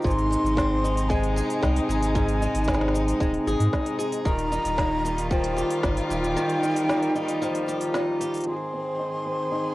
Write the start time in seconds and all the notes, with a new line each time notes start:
Already playing: D#3 F3 D#4
0.02 G#1 G#2 C3 G#3 D#4 C6, kick, shaker
0.06 shaker
0.10 shaker
0.19 open hi-hat
0.31 D#4, shaker
0.44 G#1, shaker
0.57 C4, kick, snare, shaker
0.84 D#4, shaker
0.97 open hi-hat, shaker
1.09 G#3 G#5, kick, shaker
1.24 open hi-hat
1.36 G#4, shaker
1.50 open hi-hat, shaker
1.61 C2 D#4 G5, kick, snare, shaker
1.76 open hi-hat
1.89 G#1 G#4 G#5, shaker
2.03 open hi-hat, shaker
2.15 G#2, kick, shaker
2.28 open hi-hat
2.42 D#4, shaker
2.54 G#1, open hi-hat, shaker
2.64 C4, kick, shaker
2.68 snare
2.73 snare, shaker
2.81 snare
2.88 snare
2.94 D#4, shaker
3.08 open hi-hat, shaker
3.20 D#1 G#3, kick, shaker
3.34 open hi-hat
3.46 G#1 G#4, shaker
3.60 G#2, open hi-hat, shaker
3.73 D#4, kick, snare, shaker
3.86 open hi-hat
3.99 G#4, shaker
4.12 open hi-hat, shaker
4.25 D#1 D#3 G3 F4 A#5, kick, shaker
4.39 open hi-hat
4.52 D#4, shaker
4.64 D#1, open hi-hat, shaker
4.78 A#3, kick, snare, shaker
5.05 D#4, shaker
5.18 open hi-hat, shaker
5.30 F3 G5, kick, shaker
5.44 open hi-hat
5.57 G4, shaker
5.70 open hi-hat
5.83 G1 D#4, kick, snare, shaker
5.97 open hi-hat
6.10 D#1 G4 G5, shaker
6.24 shaker
6.36 D#3, shaker
6.49 open hi-hat
6.63 D#4, shaker
6.76 open hi-hat, shaker
6.89 A#3, snare, shaker
7.03 open hi-hat
7.16 D#4, shaker
7.29 open hi-hat, shaker
7.42 F3, shaker
7.55 open hi-hat
7.68 G4, shaker
7.81 open hi-hat, shaker
7.94 D#4, snare, shaker
8.21 G4, open hi-hat, shaker
8.34 open hi-hat, shaker
8.37 open hi-hat
8.40 open hi-hat
8.44 G#2, open hi-hat
8.47 D#3 C4 G#4 C6, open hi-hat
8.50 open hi-hat
8.53 open hi-hat
8.56 open hi-hat
8.74 C4
8.99 D#4
9.26 C4
9.52 D#4